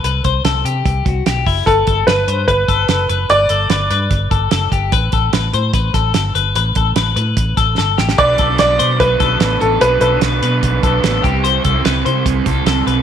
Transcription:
<<
  \new Staff \with { instrumentName = "Clean electric guitar" } { \time 4/4 \key a \dorian \tempo 4 = 147 b'8 c''8 a'8 g'4 fis'8 g'8 e'8 | b'8 a'8 b'8 c''8 b'8 a'8 a'8 b'8 | b'8 a'8 b'8 b'4 a'8 a'8 g'8 | b'8 a'8 b'8 c''8 b'8 a'8 a'8 b'8 |
b'8 a'8 b'8 b'4 a'8 a'8 g'8 | b'8 a'8 b'8 c''8 b'8 a'8 a'8 b'8 | b'8 a'8 b'8 b'4 a'8 a'8 g'8 | c''8 a'8 b'8 c''8 b'8 a'8 a'8 b'8 | }
  \new Staff \with { instrumentName = "Upright piano" } { \time 4/4 \key a \dorian r1 | a'4 b'4 b'2 | d''2 r2 | r1 |
r1 | d''4 d''4 b'4. a'8 | b'8 b'2. r8 | r1 | }
  \new Staff \with { instrumentName = "Overdriven electric guitar" } { \time 4/4 \key a \dorian r1 | r1 | r1 | r1 |
r1 | <b, fis b d'>8. <fis b d'>8. <b, fis b d'>4 <b, fis b d'>8 <b, fis b d'>4 | <b, fis b d'>8. <fis b d'>8. <b, fis b d'>4 <b, fis b d'>8 <b, fis b d'>8 <c g c' e'>8~ | <c g c' e'>8. <g c' e'>8. <c g c' e'>4 <c g c' e'>8 <c g c' e'>4 | }
  \new Staff \with { instrumentName = "Fingered electric bass" } { \clef bass \time 4/4 \key a \dorian c,8 c,8 c,8 c8 c,8 c,8 b,,8 fis,,8 | g,,8 g,,8 g,,8 g,8 g,,8 g,,8 fis,,8 fis,,8 | g,,8 g,,8 g,,8 g,8 g,,8 g,,8 fis,,8 g,,8 | a,,8 a,,8 a,,8 a,8 a,,8 a,,8 g,,8 g,,8 |
a,,8 a,,8 a,,8 a,8 a,,8 a,,8 g,,8 a,,8 | b,,8 b,,8 b,,8 b,8 b,,8 b,,8 a,,8 a,,8 | b,,8 b,,8 b,,8 b,8 b,,8 b,,8 a,,8 c,8~ | c,8 c,8 c,8 c8 c,8 c,8 c,8 b,,8 | }
  \new DrumStaff \with { instrumentName = "Drums" } \drummode { \time 4/4 hh8 <hh bd>8 <hh sn>8 hh8 <hh bd>8 <hh bd>8 <hh sn>8 <hho bd>8 | <hh bd>8 <hh bd>8 <hh sn>8 hh8 <hh bd>8 <hh bd>8 <hh sn>8 hh8 | hh8 hh8 <hh sn>8 hh8 <hh bd>8 <hh bd>8 <hh sn>8 <hh bd>8 | <hh bd>8 <hh bd>8 <hh sn>8 hh8 <hh bd>8 <hh bd sn>8 <hh sn>8 hh8 |
hh8 <hh bd>8 <hh sn>8 hh8 <hh bd>8 <hh bd sn>8 sn8 sn16 sn16 | <hh bd>8 <hh bd>8 <hh sn>8 hh8 <hh bd>8 <hh bd>8 <hh sn>8 hh8 | hh8 hh8 <hh sn>8 hh8 <hh bd>8 <hh bd>8 <hh sn>8 <hh bd>8 | hh8 <hh bd>8 <hh sn>8 hh8 <hh bd>8 <hh bd>8 <hh sn>8 hh8 | }
>>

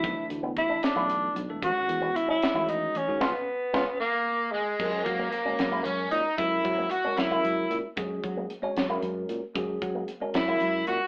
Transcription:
<<
  \new Staff \with { instrumentName = "Tenor saxophone" } { \time 6/8 \key cis \minor \tempo 4. = 76 e'8 r8 e'8 d'4 r8 | fis'4 e'16 e'8. dis'8 cis'8 | b4. ais4 gis8~ | \key fis \mixolydian gis8 ais8 ais4 cis'8 dis'8 |
e'4 fis'8 e'4 r8 | r2. | r4. e'4 fis'8 | }
  \new Staff \with { instrumentName = "Overdriven electric guitar" } { \time 6/8 \key cis \minor r2. | r2. | r4. ais4 gis8~ | \key fis \mixolydian gis8 ais8 ais4 cis'8 dis'8 |
e'4 fis'8 e'4 r8 | r2. | r4. e'4 fis'8 | }
  \new Staff \with { instrumentName = "Clean electric guitar" } { \time 6/8 \key cis \minor r8. b8 d'8 e'8 r8. | r8. b8 cis'8 e'8 r8. | <b cis' eis'>8 r8 <b cis' eis'>8 r4. | \key fis \mixolydian r8. ais8 cis'8 e'8 r8. |
r8. ais8 cis'8 e'8 r8. | r8. ais8 cis'8 e'8 r8. | r8. ais8 cis'8 e'8 r8. | }
  \new Staff \with { instrumentName = "Tine electric piano" } { \time 6/8 \key cis \minor <e a d' e'>4. r16 <e a d' a'>8. r16 <e a d' a'>16 | <dis gis cis' fis'>4. r16 <dis gis cis' fis'>8. r16 <dis gis cis' fis'>16 | <b cis' eis'>8 r8 <b cis' eis'>8 r4. | \key fis \mixolydian <gis cis' fis' ais'>4 r16 <gis cis' fis' cis''>8 <gis cis' fis' ais'>4 r16 |
<gis cis' fis' ais'>4 r16 <gis cis' fis' ais'>8 <gis cis' fis' ais'>4 r16 | <gis cis' fis' gis'>4 r16 <gis cis' fis' cis''>8 <gis cis' fis' ais'>4 r16 | <gis cis' fis' gis'>4 r16 <gis cis' fis' ais'>8 <gis cis' fis' ais'>4 r16 | }
  \new Staff \with { instrumentName = "Fretless electric bass" } { \clef bass \time 6/8 \key cis \minor b,,16 r16 d,8 r8. b,,8. b,,16 e,,16 | a,,16 r16 e,8 r8. a,,8. a,,16 gis,16 | cis,16 r8. cis,16 r4. r16 | \key fis \mixolydian fis,8 fis8 r8 fis,8 fis,8 ais,16 r16 |
fis,8 fis8 r8 fis,8 fis,8 ais,16 r16 | fis,8 fis8 r8 fis,8 fis,8 ais,16 r16 | fis,8 fis8 r8 fis,8 fis,8 ais,16 r16 | }
  \new DrumStaff \with { instrumentName = "Drums" } \drummode { \time 6/8 <hh bd>8 hh8 <hh bd>8 <hh sn>8 hh8 hh8 | <hh bd>8 hh8 hh8 <hh sn>8 hh8 hh8 | <bd sn>4 <bd sn>8 r4. | <cymc bd>8 <hh bd>8 hh8 <hh sn>8 hh8 hh8 |
<hh bd>8 <hh bd>8 hh8 <hh sn>8 hh8 hh8 | <hh bd>8 <hh bd>8 hh8 <hh sn>8 hh8 hh8 | <hh bd>8 <hh bd>8 hh8 <hh sn>8 hh8 hh8 | }
>>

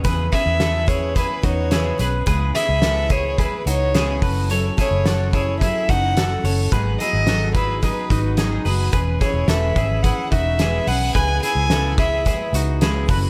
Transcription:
<<
  \new Staff \with { instrumentName = "Violin" } { \time 4/4 \key e \major \tempo 4 = 108 r8 e''4 cis''8 b'8 cis''4 r8 | r8 e''4 cis''8 b'8 cis''4 r8 | r8 cis''4 cis''8 e''8 fis''4 r8 | r8 dis''4 b'8 b'4 r4 |
r8 cis''8 e''4 fis''8 e''4 fis''8 | gis''8 gis''4 e''4 r4. | }
  \new Staff \with { instrumentName = "Clean electric guitar" } { \time 4/4 \key e \major <gis' b'>8 <e' gis'>8 <e' a'>8 <e' gis'>8 <e' gis'>8 <dis' fis'>8 <e' gis'>8 <gis' b'>8 | <gis' b'>8 <e' gis'>8 <e' a'>8 <e' gis'>8 <e' gis'>8 <dis' fis'>8 <e' gis'>8 <fis' b'>8 | <a' cis''>8 <e' gis'>8 <fis' a'>8 <e' gis'>8 <e' gis'>8 <dis' fis'>8 <fis' a'>8 <a' cis''>8 | <gis' b'>8 <e' gis'>8 <fis' a'>8 <e' gis'>8 <dis' gis'>8 <dis' fis'>8 <dis' gis'>8 <gis' b'>8 |
<gis' b'>8 <e' gis'>8 <e' a'>8 <e' gis'>8 <e' gis'>8 <dis' fis'>8 <e' gis'>8 <gis' b'>8 | <gis' b'>8 <e' gis'>8 <e' a'>8 <e' gis'>8 <e' gis'>8 <dis' fis'>8 <e' gis'>8 <fis' b'>8 | }
  \new Staff \with { instrumentName = "Twelve-string acoustic guitar" } { \time 4/4 \key e \major <cis e b cis' gis' b'>8 <b cis' gis' b'>8 <cis e b cis' gis' b'>8 <b cis' gis' b'>8 <b cis' gis' b'>8 <b cis' gis' b'>8 <cis e b cis' gis' b'>8 <b cis' gis' b'>8 | <cis gis b e' gis'>8 <b e' gis'>8 <cis gis b e' gis'>8 <b e' gis'>8 <gis b e' gis'>8 <b e' gis'>8 <cis gis b e' gis'>8 <cis' e' a'>8 | <fis cis' e' a'>8 <cis' e' a'>8 <fis cis' e' a'>8 <cis' e' a'>8 <fis cis' e' a'>8 <cis' e' a'>8 <fis cis' e' a'>8 <cis' e' a'>8 | <gis, dis fis b dis' gis'>8 <fis b dis' gis'>8 <gis, dis fis b dis' gis'>8 <fis b dis' gis'>8 <fis b dis' gis'>8 <fis b dis' gis'>8 <gis, dis fis b dis' gis'>8 <fis b dis' gis'>8 |
<e gis cis' gis' b'>8 <cis' gis' b'>8 <e gis cis' gis' b'>8 <cis' gis' b'>8 <gis cis' gis' b'>8 <cis' gis' b'>8 <e gis cis' gis' b'>8 <cis' gis' b'>8 | <cis gis b e' gis'>8 <b e' gis'>8 <cis gis b e' gis'>8 <b e' gis'>8 <gis b e' gis'>8 <b e' gis'>8 <cis gis b e' gis'>8 <cis' e' a'>8 | }
  \new Staff \with { instrumentName = "Fingered electric bass" } { \clef bass \time 4/4 \key e \major e,8 r16 e,4. r16 e,4 b,,8 | cis,8 r16 cis,4. r16 cis,4 fis,,8~ | fis,,8 r16 fis,,4. r16 fis,,4 fis,,8 | gis,,8 r16 gis,,4. r16 gis,,4 fis,,8 |
e,,8 r16 e,,16 e,,8 gis,,8. r16 e,,4 b,,8 | cis,8 r16 cis,4. r16 cis,4 fis,,8 | }
  \new DrumStaff \with { instrumentName = "Drums" } \drummode { \time 4/4 <hh bd>8 <hh bd sn>8 <hh sn>8 <hh bd>8 <hh bd>8 <hh bd>8 <hh sn>8 hh8 | <hh bd>8 <hh sn>8 <hh sn>8 <hh bd>8 <hh bd>8 hh8 <hh sn>8 <hho bd>8 | hh8 <hh bd sn>8 <hh sn>8 <hh bd>8 <hh bd>8 <hh bd>8 <hh sn>8 hho8 | <hh bd>8 hh8 <hh sn>8 <hh bd>8 <hh bd>8 <hh bd>8 <hh sn>8 hho8 |
<hh bd>8 <hh bd sn>8 <hh sn>8 <hh bd>8 <hh bd>8 <hh bd>8 <hh sn>8 hho8 | <hh bd>8 hh8 <hh sn>8 <hh bd>8 <hh bd>8 hh8 <hh sn>8 <hho bd>8 | }
>>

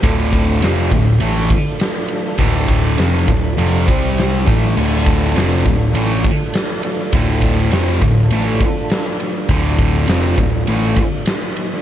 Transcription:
<<
  \new Staff \with { instrumentName = "Tonewheel organ" } { \time 4/4 \key d \minor \tempo 4 = 101 <a d' f' a'>1 | \tuplet 3/2 { <bes ees' fis' bes'>8 <a d' f' a'>4~ } <a d' f' a'>4. <g c' g' c''>4 <a d' f' a'>8~ | <a d' f' a'>2.~ <a d' f' a'>8 <a d' f' a'>8~ | <a d' f' a'>2.~ <a d' f' a'>8 <a d' f'>8~ |
<a d' f'>2.~ \tuplet 3/2 { <a d' f'>8. <fis bes ees'>8 <f a d'>16 } | }
  \new Staff \with { instrumentName = "Distorted electric guitar" } { \clef bass \time 4/4 \key d \minor <d, a, d>4 <f, c f>8 <d, a,>8 <a, e a>8 r4. | <d, a, d>4 <f, c f>8 <d, a,>8 <f, c f>8 <c g c'>4 <a, e a>8 | <d, a, d>4 <f, c f>8 <d, a,>8 <a, e a>8 r4. | <d, a, d>4 <f, c f>8 <d, a,>8 <a, e a>8 r4. |
<d, a, d>4 <f, c f>8 <d, a,>8 <a, e a>8 r4. | }
  \new Staff \with { instrumentName = "Picked electric bass" } { \clef bass \time 4/4 \key d \minor d,,4 f,,8 d,,8 a,,8 r4. | d,,4 f,,8 d,,8 f,,8 c,4 a,,8 | d,,4 f,,8 d,,8 a,,8 r4. | d,,4 f,,8 d,,8 a,,8 r4. |
d,,4 f,,8 d,,8 a,,8 r4. | }
  \new DrumStaff \with { instrumentName = "Drums" } \drummode { \time 4/4 <bd cymr>8 <bd cymr>8 <cymr sn>8 <bd cymr>8 cymr8 <bd cymr>8 <cymr sn>8 cymr8 | <bd cymr>8 <bd cymr>8 <cymr sn>8 <bd cymr>8 cymr8 <bd cymr>8 <cymr sn>8 <bd cymr>16 sn16 | cymc8 <bd cymr>8 <cymr sn>8 <bd cymr>8 cymr8 <bd cymr>8 <cymr sn>8 cymr16 sn16 | <bd cymr>8 <bd cymr>8 <cymr sn>8 <bd cymr>8 cymr8 <bd cymr>8 <cymr sn>8 cymr8 |
<bd cymr>8 <bd cymr>8 <cymr sn>8 <bd cymr>8 cymr8 <bd cymr>8 <cymr sn>8 cymr16 sn16 | }
>>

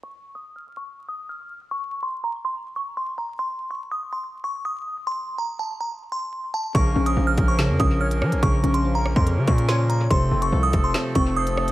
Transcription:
<<
  \new Staff \with { instrumentName = "Synth bell" } { \time 4/4 \key bes \minor \tempo 4 = 143 des'''8. ees'''8 f'''8 des'''16 r8 ees'''8 f'''4 | des'''8. c'''8 bes''8 c'''16 r8 des'''8 c'''8 bes''8 | c'''8. des'''8 ees'''8 c'''16 r8 des'''8 ees'''4 | c'''8. bes''8 a''8 bes''16 r8 c'''4 a''8 |
des'''8. ees'''8 f'''8 des'''16 r8 ees'''8 f'''4 | des'''8. c'''8 bes''8 c'''16 r8 des'''8 c'''8 bes''8 | c'''8. des'''8 ees'''8 c'''16 r8 des'''8 ees'''4 | }
  \new Staff \with { instrumentName = "Accordion" } { \time 4/4 \key bes \minor r1 | r1 | r1 | r1 |
<bes des' bes'>1~ | <bes des' bes'>1 | <a c' a'>1 | }
  \new Staff \with { instrumentName = "Accordion" } { \clef bass \time 4/4 \key bes \minor r1 | r1 | r1 | r1 |
f1~ | f1~ | f1 | }
  \new Staff \with { instrumentName = "Synth pluck" } { \clef bass \time 4/4 \key bes \minor r1 | r1 | r1 | r1 |
des8 des'8 f4 des8 des'8 des''4 | des8 des'8 f4 des8 des'8 des''4 | c8 c'8 f4 c8 c'8 c''4 | }
  \new Staff \with { instrumentName = "808-style bass" } { \clef bass \time 4/4 \key bes \minor r1 | r1 | r1 | r1 |
bes,,8 bes,,8 bes,,8 bes,,8. f,16 bes,,4 f16 bes,,16 | bes,,8 bes,,4~ bes,,16 f,8 des16 bes,4. | f,,8 f,,8 c,8 f,,8 r8 f,,4. | }
  \new DrumStaff \with { instrumentName = "Drums" } \drummode { \time 4/4 r4 r4 r4 r4 | r4 r4 r4 r4 | r4 r4 r4 r4 | r4 r4 r4 r4 |
<hh bd>8. hh16 r8 <hh bd>8 <hh sn>8 <hh bd>8 r16 hh16 ss16 hh16 | <hh bd>8 hh16 hh16 r8 ss16 bd16 hh8 <hh bd>16 hh16 sn8 hh8 | <hh bd>8. hh16 r8 <hh bd>8 <hh sn>8 <hh bd>8 r16 hh16 ss16 hh16 | }
>>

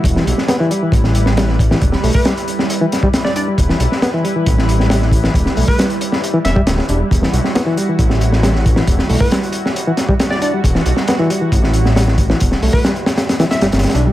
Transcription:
<<
  \new Staff \with { instrumentName = "Synth pluck" } { \time 4/4 \key e \minor \tempo 4 = 136 r1 | r8. b'4. r4 d''16 d''16 r16 | r1 | r8. b'4. r16 e''4 r8 |
r1 | r8. b'4. r4 d''16 d''16 r16 | r1 | r8. b'4. r16 e''4 r8 | }
  \new Staff \with { instrumentName = "Analog synth pad" } { \time 4/4 \key e \minor << { b'1~ | b'1~ | b'1~ | b'1 |
fis'1~ | fis'1~ | fis'1~ | fis'1 | } \\ { <g e'>1~ | <g e'>1~ | <g e'>1~ | <g e'>1~ |
<g e'>1~ | <g e'>1~ | <g e'>1~ | <g e'>1 | } >> }
  \new Staff \with { instrumentName = "Reed electric piano" } { \clef bass \time 4/4 \key e \minor r16 e16 r8 b16 e16 g16 e16 r4 g16 r8 e16 | r8 a8 g16 r4 e16 r16 g16 r8 d'16 g16 | r16 e16 r8 b16 e16 g16 e16 r4 g16 r8 e16 | r8 a8 g16 r4 e16 r16 g16 r8 d'16 g16 |
r16 e16 r8 b16 e16 g16 e16 r4 g16 r8 e16 | r8 a8 g16 r4 e16 r16 g16 r8 d'16 g16 | r16 e16 r8 b16 e16 g16 e16 r4 g16 r8 e16 | r8 a8 g16 r4 e16 r16 g16 r8 d'16 g16 | }
  \new Staff \with { instrumentName = "Detuned saw bass" } { \clef bass \time 4/4 \key e \minor e,,16 r16 b,,16 r4 r16 a,,4.~ a,,16 r16 | e,,16 r16 b,,16 r2. r16 | e,,16 r16 b,,16 r4 r16 a,,4.~ a,,16 r16 | e,,16 r16 b,,16 r4. r16 e,,16 d,,16 d,,16 r16 e,,16 r16 |
e,,16 r16 b,,16 r4 r16 a,,4.~ a,,16 r16 | e,,16 r16 b,,16 r2. r16 | e,,16 r16 b,,16 r4 r16 a,,4.~ a,,16 r16 | e,,16 r16 b,,16 r2 g,,16 g,,16 r16 b,,16 r16 | }
  \new DrumStaff \with { instrumentName = "Drums" } \drummode { \time 4/4 <hh bd>16 sn16 hh16 sn16 <hh sn>8 hh8 <hh bd>16 sn16 hh16 sn16 <hh sn>16 sn16 <hh bd>16 sn16 | <hh bd>16 sn16 hho16 bd16 <hh sn>16 hh16 hh16 sn16 hh8 <hh sn>16 bd16 <hh sn>16 sn16 hh8 | <hh bd>16 sn16 hh16 sn16 <hh sn>8 hh8 <hh bd>16 sn16 hh16 sn16 <hh sn>16 sn16 <hh bd>16 sn16 | <hh bd>16 sn16 hho16 bd16 <hh sn>16 hh16 hh16 sn16 hh8 <hh sn>16 bd16 <hh sn>16 sn16 hh8 |
<hh bd>16 sn16 hh16 sn16 <hh sn>8 hh8 <hh bd>16 sn16 hh16 sn16 <hh sn>16 sn16 <hh bd>16 sn16 | <hh bd>16 sn16 hho16 bd16 <hh sn>16 hh16 hh16 sn16 hh8 <hh sn>16 bd16 <hh sn>16 sn16 hh8 | <hh bd>16 sn16 hh16 sn16 <hh sn>8 hh8 <hh bd>16 sn16 hh16 sn16 <hh sn>16 sn16 <hh bd>16 sn16 | <hh bd>16 sn16 hho16 bd16 <hh sn>16 hh16 <hh sn>16 <hh sn>16 <hh sn>16 <hh sn>16 <hh sn>16 <hh sn>16 <hh sn>32 <hh sn>32 <hh sn>32 <hh sn>32 hh8 | }
>>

